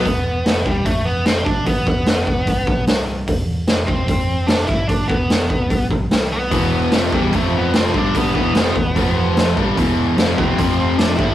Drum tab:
HH |o-o-o-o-|o-o-o-o-|o-o-o-o-|o-o-o-o-|
SD |--o---o-|--o---o-|--o---o-|--o---o-|
BD |o--oo--o|oo-ooo--|o--oo--o|oo-ooo--|

HH |o-o-o-o-|o-o-o-o-|o-o-o-o-|
SD |--o---o-|--o---o-|--o---o-|
BD |o--oo--o|oo-oo--o|o--oo--o|